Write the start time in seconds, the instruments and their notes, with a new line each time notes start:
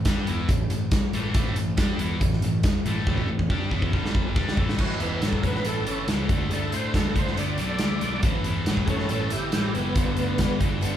0.05 picked electric bass G2, distorted electric guitar G3 D4 G4, kick, snare, closed hi-hat
0.27 picked electric bass E2, distorted electric guitar E3 B3 E4, closed hi-hat
0.49 picked electric bass A1, distorted electric guitar A2 E3, kick, closed hi-hat
0.70 picked electric bass A1, distorted electric guitar A2 E3, closed hi-hat
0.91 kick, snare, closed hi-hat
1.13 picked electric bass A1, distorted electric guitar A2 E3 A3, closed hi-hat
1.34 picked electric bass A1, distorted electric guitar A2 E3 A3, kick, closed hi-hat
1.56 picked electric bass A1, distorted electric guitar A2 E3, closed hi-hat
1.77 picked electric bass G2, distorted electric guitar G3 D4 G4, kick, snare, closed hi-hat
1.98 picked electric bass E2, distorted electric guitar E3 B3 E4, closed hi-hat
2.21 picked electric bass A1, distorted electric guitar A2 E3, kick, closed hi-hat
2.33 snare
2.42 picked electric bass A1, distorted electric guitar A2 E3, closed hi-hat
2.63 kick, snare, closed hi-hat
2.85 picked electric bass A1, distorted electric guitar A2 E3 A3, closed hi-hat
3.07 picked electric bass A1, distorted electric guitar A2 E3 A3, kick
3.18 kick
3.28 picked electric bass A1, distorted electric guitar A2 E3
3.39 kick
3.50 picked electric bass G2, distorted electric guitar G3 D4 G4, kick
3.71 picked electric bass E2, distorted electric guitar E3 B3 E4, kick
3.82 kick
3.93 picked electric bass G1, distorted electric guitar G2 D3 G3, kick
4.06 snare
4.15 kick
4.36 picked electric bass G2, distorted electric guitar G3 D4 G4, kick
4.48 snare
4.57 picked electric bass A1, distorted electric guitar A2 E3 A3, kick
4.69 snare
4.78 picked electric bass A1, twelve-string acoustic guitar A2 E3 A3 C#4 E4, distorted electric guitar A2 E3, tonewheel organ F#4, kick, crash
4.99 picked electric bass E2, distorted electric guitar A2 E3, twelve-string acoustic guitar C#4 E4, tonewheel organ B4, closed hi-hat
5.03 twelve-string acoustic guitar A3
5.21 picked electric bass A1, distorted electric guitar A2 F#3, twelve-string acoustic guitar E3 A3, tonewheel organ A4, snare, closed hi-hat
5.26 twelve-string acoustic guitar C#4 E4
5.33 kick
5.42 picked electric bass A1, distorted electric guitar A2 F#3, twelve-string acoustic guitar E4, tonewheel organ A#4, kick, closed hi-hat
5.46 twelve-string acoustic guitar A3 C#4, tonewheel organ B4
5.55 snare
5.64 picked electric bass A1, distorted electric guitar A2 E3, twelve-string acoustic guitar A2 E3 A3, tonewheel organ A4, closed hi-hat
5.68 twelve-string acoustic guitar C#4 E4
5.86 picked electric bass G1, distorted electric guitar A2 E3, tonewheel organ C#4 A4, twelve-string acoustic guitar C#4 E4, closed hi-hat
5.91 twelve-string acoustic guitar A3
6.07 picked electric bass C#2, distorted electric guitar A2 E3, twelve-string acoustic guitar E3 A3 C#4 E4, snare, closed hi-hat
6.29 picked electric bass D2, distorted electric guitar D3 A3, twelve-string acoustic guitar A3 D4 E4, kick, closed hi-hat
6.50 picked electric bass D2, distorted electric guitar D3 A3, twelve-string acoustic guitar D3 A3 D4, tonewheel organ G#4 A4, closed hi-hat
6.54 twelve-string acoustic guitar E4
6.72 picked electric bass A2, distorted electric guitar D3 A3, twelve-string acoustic guitar A3 D4 E4, tonewheel organ C5, closed hi-hat
6.94 picked electric bass D2, twelve-string acoustic guitar D3 A3 D4 E4, distorted electric guitar D3 B3, tonewheel organ A4, kick, snare, closed hi-hat
7.15 picked electric bass D2, distorted electric guitar D3 B3, twelve-string acoustic guitar D4 E4, tonewheel organ C5, kick, closed hi-hat
7.20 twelve-string acoustic guitar A3
7.27 snare
7.37 picked electric bass D2, twelve-string acoustic guitar D3 A3 D4 E4, distorted electric guitar D3 A3, tonewheel organ D5, closed hi-hat
7.58 picked electric bass B1, distorted electric guitar D3 A3, twelve-string acoustic guitar D4 E4, closed hi-hat
7.62 twelve-string acoustic guitar A3
7.79 picked electric bass D2, distorted electric guitar D3 A3, twelve-string acoustic guitar D3 A3 D4, snare, closed hi-hat
7.83 twelve-string acoustic guitar E4
8.01 picked electric bass B1, distorted electric guitar D3 A3, twelve-string acoustic guitar A3 D4 E4, closed hi-hat
8.23 picked electric bass A1, distorted electric guitar A2 E3, twelve-string acoustic guitar A2 E3 A3 C#4 E4, kick, closed hi-hat
8.44 picked electric bass E2, distorted electric guitar A2 E3, twelve-string acoustic guitar A3 C#4 E4, closed hi-hat
8.66 picked electric bass A1, distorted electric guitar A2 F#3, twelve-string acoustic guitar E3 A3 C#4 E4, snare, closed hi-hat
8.77 kick
8.86 picked electric bass A1, distorted electric guitar A2 F#3, twelve-string acoustic guitar C#4 E4, tonewheel organ C#4 G#4 A4, kick, closed hi-hat
8.91 twelve-string acoustic guitar A3
8.99 snare
9.09 picked electric bass A1, twelve-string acoustic guitar A2 E3 A3 C#4 E4, distorted electric guitar A2 E3, tonewheel organ C#4 A4, closed hi-hat
9.30 picked electric bass G1, distorted electric guitar A2 E3, twelve-string acoustic guitar A3 C#4 E4, tonewheel organ E4 G4, closed hi-hat
9.52 picked electric bass A1, distorted electric guitar A2 E3, twelve-string acoustic guitar E3 A3 C#4 E4, tonewheel organ E4 G4, snare, closed hi-hat
9.74 picked electric bass F#1, distorted electric guitar A2 E3, twelve-string acoustic guitar A3 C#4 E4, tonewheel organ B3, closed hi-hat
9.96 picked electric bass G1, twelve-string acoustic guitar G2 D3 G3 B3 D4 G4, distorted electric guitar G2 D3, kick, closed hi-hat
10.17 picked electric bass D2, distorted electric guitar G2 D3, twelve-string acoustic guitar G3 B3 D4 G4, closed hi-hat
10.37 picked electric bass G1, distorted electric guitar G2 E3, twelve-string acoustic guitar G3 B3 D4 G4, kick, snare, closed hi-hat
10.58 picked electric bass G1, distorted electric guitar G2 E3, twelve-string acoustic guitar G3 B3 D4 G4, kick, closed hi-hat
10.81 picked electric bass G1, twelve-string acoustic guitar G2 D3 G3 B3 D4 G4, distorted electric guitar G2 D3, closed hi-hat